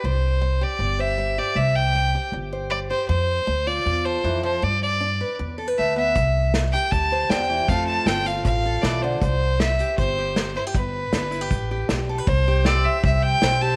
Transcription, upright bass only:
\new Staff \with { instrumentName = "Upright bass" } { \clef bass \time 4/4 \key c \major \tempo 4 = 157 c,2 g,,2 | c,2 g,,2 | f,4 d,4 e,4 f,4 | g,2 e,4 d,4 |
c,2 d,4 e,4 | f,4 g,,4 a,,4 b,,4 | c,2 g,,2 | g,,4 g,,4 a,,4 b,,4 |
c,2 c,4 b,,4 | }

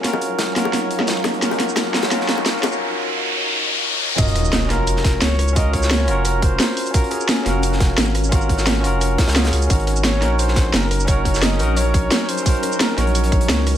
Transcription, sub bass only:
\new Staff \with { instrumentName = "Sub bass" } { \clef bass \time 4/4 \key ees \minor \tempo 4 = 174 r1 | r1 | r1 | ees,,4. f,,4. des,4~ |
des,4. f,,4. r4 | r4. f,,4. aes,,4~ | aes,,4. f,,4 r16 des,8. des,8 | aes,,4. bes,,4. ges,,4~ |
ges,,4. bes,,4. r4 | r4. bes,,4. des,4 | }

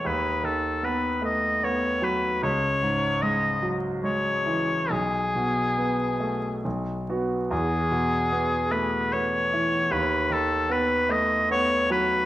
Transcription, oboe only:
\new Staff \with { instrumentName = "Oboe" } { \time 3/4 \key b \mixolydian \tempo 4 = 75 b'8 a'8 b'8 dis''8 cis''8 b'8 | cis''4 dis''8 r8 cis''4 | gis'2 r4 | gis'4. b'8 cis''4 |
b'8 a'8 b'8 dis''8 cis''8 b'8 | }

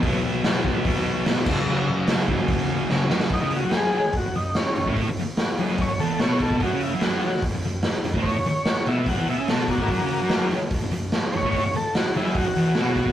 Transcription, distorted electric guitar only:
\new Staff \with { instrumentName = "Distorted electric guitar" } { \clef bass \time 4/4 \key b \major \tempo 4 = 146 <b, fis b>8 <fis b>8 <b, fis b>8 <fis b>4. <b, fis b>8 <fis, cis fis>8 | <fis, cis fis>8 <cis fis>8 <fis, cis fis>8 <cis fis>4. <fis, cis fis>8 <cis fis>8 | <fis, fis>16 <cis cis'>8 <fis, fis>8. r8. fis,16 fis,8 r8 fis,16 <a, a>16~ | <a, a>16 fis,16 r4 <fis, fis>8. fis,16 <e, e>8 <b, b>4 |
<fis, fis>16 <cis cis'>8 <fis, fis>8. r8. fis,16 fis,8 r8 fis,16 <a, a>16~ | <a, a>16 fis,16 r4 <b, b>8 <fis, fis>16 <e, e>16 <b, b>16 <cis cis'>16 <b, b>8. <a, a>16 | <fis, fis>16 <cis cis'>8 <fis, fis>8. r8. fis,16 fis,8 r8 fis,16 <a, a>16~ | <a, a>16 fis,16 r4 <fis, fis>8. fis,16 <e, e>8 <b, b>4 | }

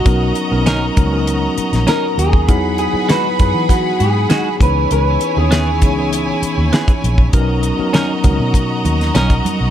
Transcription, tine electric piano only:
\new Staff \with { instrumentName = "Tine electric piano" } { \time 4/4 \key b \major \tempo 4 = 99 <fis b cis' dis' ais'>8 r16 <fis b cis' dis' ais'>8 r16 <fis b cis' dis' ais'>16 <fis b cis' dis' ais'>4.~ <fis b cis' dis' ais'>16 r8 | <fis b dis' e' gis'>8 r16 <fis b dis' e' gis'>8 r16 <fis b dis' e' gis'>4.~ <fis b dis' e' gis'>16 r16 <e b cis' dis' gis'>8~ | <e b cis' dis' gis'>8 r16 <b cis' dis' e' gis'>8 r16 <e b cis' dis' gis'>16 <e b cis' dis' gis'>4.~ <e b cis' dis' gis'>16 r8 | <fis b cis' dis' ais'>8 r16 <fis b cis' dis' ais'>8 r16 <fis b cis' dis' ais'>4.~ <fis b cis' dis' ais'>16 r8. | }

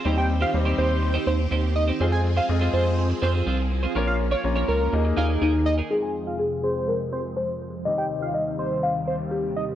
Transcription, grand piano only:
\new Staff \with { instrumentName = "Grand piano" } { \time 4/4 \key f \minor \tempo 4 = 123 <g c' ees' g' c''>8 r8 <g c' ees' g' c''>4 r2 | <aes c' f' aes' c''>8 r8 <aes c' f' aes' ees''>4 r2 | <bes des' f' bes' des''>8 r8 <bes des' f' bes' des''>4 <bes ees' aes' bes' ees''>4. r8 | <aes c' f' aes'>1 |
<ees, g c' ees' g'>1 | }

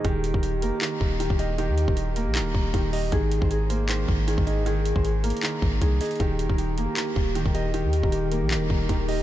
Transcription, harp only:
\new Staff \with { instrumentName = "Harp" } { \time 4/4 \key ees \major \tempo 4 = 156 g'8. bes'16 g'8 bes'8 bes'4 g'8 g'8 | g'8. bes'16 g'8 bes'8 bes'4 g'8 g'8 | aes'8. c''16 aes'8 c''8 c''4 aes'8 aes'8 | aes'8. c''16 aes'8 bes'8 bes'4 aes'8 aes'8 |
g'8. bes'16 g'8 bes'8 bes'4 g'8 g'8 | g'8. bes'16 g'8 bes'8 bes'4 g'8 g'8 | }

